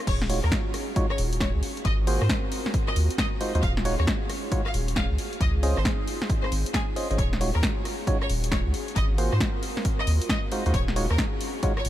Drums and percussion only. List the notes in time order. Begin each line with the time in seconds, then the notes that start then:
0.07 kick, closed hi-hat, crash
0.22 snare
0.30 open hi-hat
0.44 cross-stick
0.52 kick, snare, closed hi-hat
0.74 cross-stick, open hi-hat
0.96 kick, closed hi-hat
1.10 cross-stick
1.18 open hi-hat
1.33 closed hi-hat
1.41 kick, snare, closed hi-hat
1.63 open hi-hat
1.77 closed hi-hat
1.85 kick, closed hi-hat
2.07 open hi-hat
2.22 cross-stick
2.29 kick, snare, closed hi-hat
2.52 open hi-hat
2.66 snare
2.74 kick, closed hi-hat
2.88 cross-stick
2.96 open hi-hat
3.10 closed hi-hat
3.18 kick, snare, closed hi-hat
3.41 open hi-hat
3.55 closed hi-hat
3.63 kick, closed hi-hat
3.77 snare
3.85 open hi-hat
4.00 cross-stick
4.07 kick, snare, closed hi-hat
4.30 cross-stick, open hi-hat
4.52 kick, closed hi-hat
4.66 cross-stick
4.74 open hi-hat
4.88 closed hi-hat
4.96 kick, snare, closed hi-hat
5.18 open hi-hat
5.33 closed hi-hat
5.41 kick, closed hi-hat
5.63 open hi-hat
5.77 cross-stick
5.85 kick, snare, closed hi-hat
6.08 open hi-hat
6.22 snare
6.30 kick, closed hi-hat
6.44 cross-stick
6.52 open hi-hat
6.66 closed hi-hat
6.74 kick, snare, closed hi-hat
6.96 open hi-hat
7.11 closed hi-hat
7.18 kick, closed hi-hat
7.33 snare
7.41 open hi-hat
7.55 cross-stick
7.63 kick, snare, closed hi-hat
7.85 cross-stick, open hi-hat
8.07 kick, closed hi-hat
8.22 cross-stick
8.30 open hi-hat
8.44 closed hi-hat
8.52 kick, snare, closed hi-hat
8.74 open hi-hat
8.88 closed hi-hat
8.96 kick, closed hi-hat
9.18 open hi-hat
9.33 cross-stick
9.40 kick, snare, closed hi-hat
9.63 open hi-hat
9.77 snare
9.85 kick, closed hi-hat
9.99 cross-stick
10.07 open hi-hat
10.22 closed hi-hat
10.29 kick, snare, closed hi-hat
10.52 open hi-hat
10.66 closed hi-hat
10.74 kick, closed hi-hat
10.88 snare
10.96 open hi-hat
11.11 cross-stick
11.18 kick, snare, closed hi-hat
11.41 open hi-hat
11.63 kick, closed hi-hat
11.77 cross-stick
11.85 open hi-hat